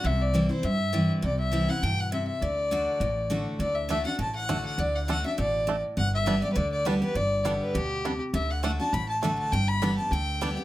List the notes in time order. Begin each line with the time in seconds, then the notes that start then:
0.04 C2 C3 E5
0.22 D5
0.34 E3 G3 C4 E4
0.49 C4 E4 C5
0.63 G2 E5
0.93 E3 G3 C4 E4
1.22 C2 C3 D5
1.40 E5
1.52 E3 G3 C4 E4
1.68 C4 E4 F#5
1.82 G2 B2 G5
2.00 F#5
2.12 C3 E5
2.28 E5
2.41 D2 D3 D5
2.71 D3 A3 D4 F#4
3.00 A1 A2
3.30 D3 A3 D4 F#4
3.59 D2 D3 D5
3.75 E5
3.89 D3 A3 D4 F#4 E5
4.05 D4 F#4 F#5
4.18 A1 A2 A5
4.35 F#5
4.49 D3 A3 D4 F#4
4.66 F#5
4.78 D2 D3 D5
4.95 F#5
5.08 D3 A3 D4 F#4 F#5
5.24 D4 F#4 E5
5.38 A1 B2 D5
5.67 A2 A3 D4
5.97 G1 G2 F#5
6.14 E5
6.26 D3 G3 B3 D4 G4
6.42 B3 G4 D5
6.52 D3 B4 D5
6.56 D2
6.72 D5
6.85 D3 G3 B3 D4 G4 B4
7.01 B3 G4 B4
7.15 G1 G2 D5
7.45 D3 G3 B3 D4 G4
7.62 B4
7.74 D2 B2 G4
8.05 C3 G3 B3 D4
8.33 D2 D3 E5
8.50 F#5
8.63 D3 A3 D4 F#4 F#5
8.80 D4 F#4 A5
8.93 A1 A2 B5
9.09 A5
9.22 D3 A3 D4 F#4 A5
9.39 A5
9.52 G1 G2 G5
9.68 B5
9.82 D3 G3 B3 D4 G4
9.97 B3 G4 A5
10.11 D2 D3 G5
10.41 D3 G3 B3 D4 G4
10.57 B3 G4